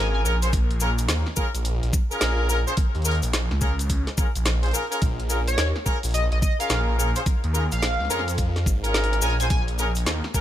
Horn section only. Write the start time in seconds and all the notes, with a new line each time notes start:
Already playing: C#4 F4 G#4 A#4
0.25 C#4 F4 G#4 A#4
0.43 C#4 F4 G#4 C5
0.81 C#4 F4 G#4 A#4
1.37 C#4 F4 G#4 A#4
2.11 C#4 F4 G#4 A#4
2.50 C#4 F4 G#4 A#4
2.67 C#4 F4 G#4 C5
3.06 C#4 F4 G#4 A#4
3.62 C#4 F4 G#4 A#4
4.18 C#4 F4 G#4 A#4
4.63 C#4 F4 G#4 C5
4.74 C#4 F4 G#4 A#4
4.91 C#4 F4 G#4 A#4
5.29 C#4 F4 G#4 A#4
5.86 C#4 F4 G#4 A#4
6.60 C#4 F4 G#4 A#4
6.98 C#4 F4 G#4 A#4
7.16 C#4 F4 G#4 C5
7.54 C#4 F4 G#4 A#4
8.10 C#4 F4 G#4 A#4
8.84 C#4 F4 G#4 A#4
9.22 C#4 F4 G#4 A#4
9.40 C#4 F4 G#4 C5
9.78 C#4 F4 G#4 A#4
10.35 C#4 F4 G#4 A#4